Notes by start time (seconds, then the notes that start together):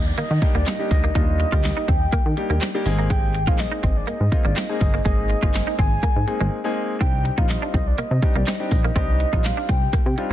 Already playing: D#2 G3 A#3 D#4 G4, downlifter
0.06 D5
0.17 D#3 A#3 D#5, closed hi-hat
0.31 D#3
0.42 G3 A#3 D4 D#4 G4, muted clean electric guitar stroke, kick, closed hi-hat
0.55 D#2 A#3 D5
0.66 C4 D#5, snare, clap, closed hi-hat, tambourine
0.79 G3 A#3 D4 D#4 G4
0.91 D2 D#5, muted clean electric guitar stroke, kick, open hi-hat
1.04 A#3
1.15 D#2 G3 A#3 D4 D#4 F4 D#5, kick, closed hi-hat
1.40 muted clean electric guitar stroke, closed hi-hat
1.52 D2 G3 A#3 D#4 F4 G4, kick
1.64 muted clean electric guitar stroke, snare, clap, closed hi-hat, tambourine
1.77 D#4
1.88 D#2 C4 G5, kick, closed hi-hat
2.12 D#3 A#3, kick, closed hi-hat
2.26 D#3
2.37 G3 A#3 D4 D#4 G4, muted clean electric guitar stroke, closed hi-hat
2.50 D#2 A#3
2.61 C4, snare, clap, closed hi-hat, tambourine
2.74 G3 A#3 D4 D#4 G4
2.86 G#1 G#3 A#3 C4 D#4 G#4, muted clean electric guitar stroke, open hi-hat
2.99 A#3
3.10 G#3 G5, kick, closed hi-hat
3.35 muted clean electric guitar stroke, closed hi-hat
3.47 A#1 G#3 A#3 C4 D#4 F4 G#4 F5, kick
3.59 D#5, muted clean electric guitar stroke, snare, clap, closed hi-hat, tambourine
3.72 D#4
3.83 G#1 C4, kick, closed hi-hat
3.97 D5
4.07 G#2 A#3 D#5, closed hi-hat
4.21 G#2
4.32 G#3 A#3 C4 D#4 F4, muted clean electric guitar stroke, kick, closed hi-hat
4.45 G#1 A#3 D5
4.56 C4 D#5, snare, clap, closed hi-hat, tambourine
4.69 G#3 A#3 C4 D#4 G#4
4.81 G1, muted clean electric guitar stroke, kick, open hi-hat
4.94 A#3
5.05 G#1 G#3 A#3 C4 D#4 G#4 D#5, kick, closed hi-hat
5.30 muted clean electric guitar stroke, closed hi-hat
5.42 G1 G#3 A#3 C4 D#4 F4 G#4, kick
5.54 muted clean electric guitar stroke, snare, clap, closed hi-hat, tambourine
5.67 D#4
5.79 G#1 C4 G#5, kick, closed hi-hat
6.03 G#2 A#3, kick, closed hi-hat
6.16 G#2
6.27 G#3 A#3 C4 D#4 G#4, muted clean electric guitar stroke, closed hi-hat
6.40 G#1 G#3
6.64 G#3 A#3 C4 D#4 G#4
7.00 C2 G3 C4 G4 G5, kick, closed hi-hat
7.25 muted clean electric guitar stroke, closed hi-hat
7.38 A#1 G3 C4 D#4 F4 F5, kick
7.49 D#5, muted clean electric guitar stroke, snare, clap, closed hi-hat, tambourine
7.62 D4
7.74 C2 C4, kick, closed hi-hat
7.87 D5
7.98 C3 A#3 D#5, closed hi-hat
8.11 C3
8.22 G3 C4 D4 D#4 G4, muted clean electric guitar stroke, kick, closed hi-hat
8.35 C2 A#3 D5
8.47 C4 D#5, snare, clap, closed hi-hat, tambourine
8.59 G3 C4 D4 D#4 G4
8.71 A#1, muted clean electric guitar stroke, kick, open hi-hat
8.84 A#3
8.95 C2 G3 C4 D4 D#4 G4 D#5, kick, closed hi-hat
9.20 muted clean electric guitar stroke, closed hi-hat
9.33 A#1 G3 C4 D4 D#4 F4, kick
9.44 F5, muted clean electric guitar stroke, snare, clap, closed hi-hat, tambourine
9.57 D4
9.69 C2 C4 G5, kick, closed hi-hat
9.93 C3 A#3, kick, closed hi-hat
10.06 C3
10.17 G3 C4 D4 D#4 F4, muted clean electric guitar stroke, closed hi-hat